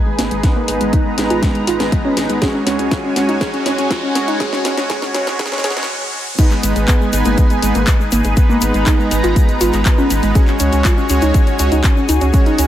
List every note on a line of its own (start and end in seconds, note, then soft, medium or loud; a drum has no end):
0.00 2.38 D#4 medium
0.00 5.85 G#4 medium
0.00 2.38 B4 medium
0.00 0.41 G#5 medium
0.00 riser medium
0.06 0.14 G#3 medium
0.19 0.28 G#1 medium
0.19 0.26 A#3 medium
0.19 snare medium
0.19 open hi-hat medium
0.31 0.41 G#1 medium
0.31 0.38 G#3 medium
0.31 closed hi-hat soft
0.43 1.15 G#3 medium
0.43 1.15 B3 medium
0.43 1.15 D#4 medium
0.43 1.15 B4 medium
0.43 2.40 A#5 medium
0.43 kick loud
0.43 snare medium
0.43 closed hi-hat medium
0.56 0.63 A#3 loud
0.68 0.78 G#1 medium
0.68 0.76 G#3 medium
0.68 open hi-hat loud
0.81 0.90 G#1 medium
0.81 0.88 G#3 medium
0.81 closed hi-hat medium
0.93 1.00 D#4 medium
0.93 kick loud
0.93 closed hi-hat medium
1.06 1.13 G#3 medium
1.18 1.27 G#1 loud
1.18 1.25 G#3 medium
1.18 2.39 G#3 medium
1.18 2.39 B3 medium
1.18 2.39 D#4 medium
1.18 2.39 B4 medium
1.18 snare medium
1.18 open hi-hat loud
1.30 1.40 G#1 medium
1.30 1.38 F4 medium
1.30 closed hi-hat medium
1.43 1.50 G#3 medium
1.43 kick loud
1.43 snare medium
1.43 closed hi-hat medium
1.55 1.62 G#3 medium
1.55 closed hi-hat soft
1.67 1.77 G#1 medium
1.67 1.75 F4 medium
1.67 open hi-hat loud
1.80 1.89 G#1 medium
1.80 1.87 G#3 medium
1.80 snare medium
1.80 closed hi-hat medium
1.92 2.00 G#3 medium
1.92 kick loud
1.92 closed hi-hat medium
2.05 2.12 C#4 medium
2.17 2.27 G#1 loud
2.17 2.24 G#3 medium
2.17 snare medium
2.17 open hi-hat loud
2.29 2.39 G#1 medium
2.29 2.37 G#3 medium
2.29 closed hi-hat soft
2.42 3.13 G#3 medium
2.42 3.13 C#4 medium
2.42 3.13 F#4 medium
2.42 5.86 F#4 medium
2.42 2.49 G#4 loud
2.42 3.13 C#5 medium
2.42 5.86 C#5 medium
2.42 5.86 G#5 medium
2.42 kick loud
2.42 snare medium
2.42 closed hi-hat medium
2.54 2.62 C#4 medium
2.66 2.76 C#2 medium
2.66 2.74 C#4 medium
2.66 snare medium
2.66 open hi-hat loud
2.79 2.89 C#2 medium
2.79 2.86 C#4 medium
2.79 closed hi-hat medium
2.91 2.99 F4 medium
2.91 kick loud
2.91 snare medium
2.91 closed hi-hat medium
3.04 3.11 C#4 medium
3.16 3.26 C#2 loud
3.16 3.39 G#3 medium
3.16 3.24 C#4 medium
3.16 3.39 C#4 medium
3.16 3.39 F#4 medium
3.16 3.39 C#5 medium
3.16 snare medium
3.16 open hi-hat loud
3.29 3.38 C#2 medium
3.29 3.36 D#4 medium
3.29 closed hi-hat soft
3.41 4.12 G#3 medium
3.41 4.12 C#4 medium
3.41 4.12 F#4 medium
3.41 3.48 G#4 medium
3.41 4.12 C#5 medium
3.41 kick loud
3.41 snare medium
3.41 closed hi-hat medium
3.53 3.61 C#4 medium
3.53 closed hi-hat soft
3.66 3.75 C#2 loud
3.66 3.73 C#4 medium
3.66 snare medium
3.66 open hi-hat loud
3.78 3.88 C#2 medium
3.78 3.85 C#4 medium
3.78 closed hi-hat medium
3.90 3.98 F4 medium
3.90 kick loud
3.90 snare medium
3.90 closed hi-hat medium
4.03 4.10 C#4 medium
4.15 4.25 C#2 medium
4.15 4.38 G#3 medium
4.15 4.23 C#4 medium
4.15 4.38 C#4 medium
4.15 4.38 F#4 medium
4.15 4.38 C#5 medium
4.15 snare medium
4.15 open hi-hat loud
4.28 4.37 C#2 medium
4.28 4.35 D#4 medium
4.28 closed hi-hat soft
4.40 4.88 G#3 medium
4.40 4.88 C#4 medium
4.40 4.88 F#4 medium
4.40 4.48 G#4 loud
4.40 4.88 C#5 medium
4.40 kick loud
4.40 snare medium
4.40 closed hi-hat medium
4.53 4.60 C#4 medium
4.53 snare medium
4.65 4.75 C#2 medium
4.65 4.72 C#4 medium
4.65 snare medium
4.65 open hi-hat loud
4.77 4.87 C#2 medium
4.77 4.85 C#4 medium
4.77 snare medium
4.77 closed hi-hat medium
4.90 5.37 G#3 medium
4.90 5.37 C#4 medium
4.90 5.37 F#4 medium
4.90 4.97 G#4 loud
4.90 5.37 C#5 medium
4.90 kick loud
4.90 snare loud
4.90 closed hi-hat medium
5.02 5.09 C#4 medium
5.02 snare medium
5.14 5.24 C#2 loud
5.14 5.22 C#4 medium
5.14 snare loud
5.14 open hi-hat loud
5.27 5.36 C#2 medium
5.27 5.34 C#4 medium
5.27 snare medium
5.27 closed hi-hat soft
5.39 5.62 G#3 medium
5.39 5.62 C#4 medium
5.39 5.62 F#4 medium
5.39 5.47 G#4 loud
5.39 5.62 C#5 medium
5.39 kick loud
5.39 snare loud
5.39 closed hi-hat medium
5.46 snare medium
5.52 5.59 C#4 medium
5.52 snare medium
5.52 closed hi-hat soft
5.58 snare medium
5.64 5.74 C#2 loud
5.64 5.87 G#3 medium
5.64 5.87 C#4 medium
5.64 5.87 F#4 medium
5.64 5.72 G#4 loud
5.64 5.87 C#5 medium
5.64 snare loud
5.64 open hi-hat loud
5.70 snare medium
5.77 5.86 C#2 medium
5.77 5.84 C#4 medium
5.77 snare medium
5.77 closed hi-hat soft
5.83 snare loud
6.38 7.10 G#3 medium
6.38 7.10 B3 medium
6.38 6.46 D#4 loud
6.38 7.10 D#4 medium
6.38 10.31 D#4 medium
6.38 10.31 G#4 medium
6.38 7.10 B4 medium
6.38 10.31 B4 medium
6.38 8.35 G#5 medium
6.38 kick loud
6.38 closed hi-hat medium
6.38 crash loud
6.38 shaker medium
6.51 6.58 G#3 medium
6.51 clap soft
6.51 shaker soft
6.63 6.73 G#1 medium
6.63 6.71 G#3 medium
6.63 open hi-hat loud
6.63 shaker medium
6.76 6.85 G#1 medium
6.76 6.83 G#3 medium
6.76 closed hi-hat medium
6.76 shaker soft
6.88 6.96 B3 medium
6.88 kick loud
6.88 clap loud
6.88 closed hi-hat medium
6.88 shaker medium
7.01 7.08 G#3 medium
7.01 shaker soft
7.13 7.23 G#1 loud
7.13 7.60 G#3 medium
7.13 7.20 G#3 medium
7.13 7.60 B3 medium
7.13 7.60 D#4 medium
7.13 7.60 B4 loud
7.13 open hi-hat loud
7.13 shaker medium
7.25 7.35 G#1 medium
7.25 7.33 A#3 medium
7.25 closed hi-hat medium
7.25 shaker soft
7.38 7.45 G#3 medium
7.38 kick loud
7.38 closed hi-hat medium
7.38 shaker medium
7.50 7.58 G#3 medium
7.50 closed hi-hat soft
7.50 shaker soft
7.62 7.72 G#1 loud
7.62 7.74 G#3 medium
7.62 7.70 G#3 medium
7.62 7.74 B3 medium
7.62 7.74 D#4 medium
7.62 7.74 B4 loud
7.62 open hi-hat loud
7.62 shaker loud
7.75 7.84 G#1 medium
7.75 7.82 A#3 medium
7.75 closed hi-hat medium
7.75 shaker soft
7.87 7.95 G#3 medium
7.87 kick loud
7.87 clap loud
7.87 closed hi-hat medium
7.87 shaker medium
8.00 8.07 G#3 medium
8.00 shaker soft
8.12 8.22 G#1 medium
8.12 8.19 A#3 medium
8.12 open hi-hat medium
8.12 shaker medium
8.24 8.34 G#1 medium
8.24 8.32 G#3 medium
8.24 closed hi-hat medium
8.24 shaker soft
8.37 8.44 G#3 medium
8.37 9.08 G#3 medium
8.37 9.08 B3 medium
8.37 9.08 D#4 medium
8.37 9.08 B4 loud
8.37 10.33 A#5 medium
8.37 kick loud
8.37 closed hi-hat medium
8.37 shaker medium
8.49 8.57 A#3 loud
8.49 shaker soft
8.61 8.71 G#1 medium
8.61 8.69 G#3 medium
8.61 open hi-hat loud
8.61 shaker loud
8.74 8.84 G#1 medium
8.74 8.81 G#3 medium
8.74 closed hi-hat medium
8.74 shaker soft
8.86 8.94 D#4 medium
8.86 kick loud
8.86 clap loud
8.86 closed hi-hat medium
8.86 shaker medium
8.99 9.06 G#3 medium
8.99 shaker soft
9.11 9.21 G#1 loud
9.11 10.32 G#3 medium
9.11 9.19 G#3 medium
9.11 10.32 B3 medium
9.11 10.32 D#4 medium
9.11 10.32 B4 medium
9.11 open hi-hat medium
9.11 shaker medium
9.24 9.33 G#1 medium
9.24 9.31 F4 medium
9.24 closed hi-hat medium
9.24 shaker soft
9.36 9.43 G#3 medium
9.36 kick loud
9.36 closed hi-hat medium
9.36 shaker medium
9.49 9.56 G#3 medium
9.49 closed hi-hat soft
9.49 shaker soft
9.61 9.71 G#1 loud
9.61 9.68 F4 medium
9.61 open hi-hat loud
9.61 shaker loud
9.73 9.83 G#1 medium
9.73 9.81 G#3 medium
9.73 clap soft
9.73 closed hi-hat medium
9.73 shaker soft
9.85 9.93 G#3 medium
9.85 kick loud
9.85 clap loud
9.85 closed hi-hat medium
9.85 shaker medium
9.98 10.05 C#4 medium
9.98 shaker soft
10.10 10.20 G#1 medium
10.10 10.18 G#3 medium
10.10 open hi-hat loud
10.10 shaker medium
10.23 10.32 G#1 medium
10.23 10.30 G#3 medium
10.23 closed hi-hat medium
10.23 shaker soft
10.35 11.07 G#3 medium
10.35 11.07 C#4 medium
10.35 12.67 F#4 medium
10.35 11.07 F#4 medium
10.35 10.43 G#4 loud
10.35 12.67 G#4 medium
10.35 11.07 C#5 medium
10.35 12.32 C#5 medium
10.35 12.67 G#5 medium
10.35 kick loud
10.35 closed hi-hat medium
10.35 shaker medium
10.48 10.55 C#4 medium
10.48 clap soft
10.48 shaker soft
10.59 10.70 C#2 medium
10.59 10.67 C#4 medium
10.59 open hi-hat loud
10.59 shaker medium
10.73 10.82 C#2 medium
10.73 10.80 C#4 medium
10.73 closed hi-hat soft
10.73 shaker soft
10.85 10.92 F4 medium
10.85 kick loud
10.85 clap loud
10.85 closed hi-hat medium
10.85 shaker medium
10.97 11.05 C#4 medium
10.97 shaker soft
11.09 11.19 C#2 loud
11.09 11.56 G#3 medium
11.09 11.17 C#4 medium
11.09 11.56 C#4 medium
11.09 11.56 F#4 medium
11.09 11.56 C#5 loud
11.09 open hi-hat loud
11.09 shaker loud
11.22 11.32 C#2 medium
11.22 11.29 D#4 medium
11.22 closed hi-hat medium
11.22 shaker soft
11.34 11.42 C#4 medium
11.34 kick loud
11.34 closed hi-hat medium
11.34 shaker medium
11.47 11.54 C#4 medium
11.47 closed hi-hat soft
11.47 shaker soft
11.59 11.69 C#2 loud
11.59 11.71 G#3 medium
11.59 11.67 C#4 medium
11.59 11.71 C#4 medium
11.59 11.71 F#4 medium
11.59 11.71 C#5 loud
11.59 open hi-hat loud
11.59 shaker loud
11.72 11.81 C#2 medium
11.72 11.79 D#4 loud
11.72 closed hi-hat medium
11.72 shaker soft
11.84 11.91 C#4 medium
11.84 kick loud
11.84 clap loud
11.84 closed hi-hat medium
11.84 shaker medium
11.97 12.04 C#4 medium
11.97 shaker soft
12.09 12.18 C#2 medium
12.09 12.16 D#4 medium
12.09 open hi-hat loud
12.09 shaker medium
12.21 12.31 C#2 medium
12.21 12.29 C#4 medium
12.21 closed hi-hat soft
12.21 shaker soft
12.33 12.67 G#3 medium
12.33 12.41 C#4 medium
12.33 12.67 C#4 medium
12.33 12.67 F#4 medium
12.33 12.67 B4 medium
12.33 12.67 C#5 loud
12.33 kick loud
12.33 closed hi-hat medium
12.33 shaker soft
12.46 12.53 D#4 loud
12.46 closed hi-hat soft
12.46 shaker soft
12.58 12.67 C#2 loud
12.58 12.66 C#4 medium
12.58 open hi-hat loud
12.58 shaker loud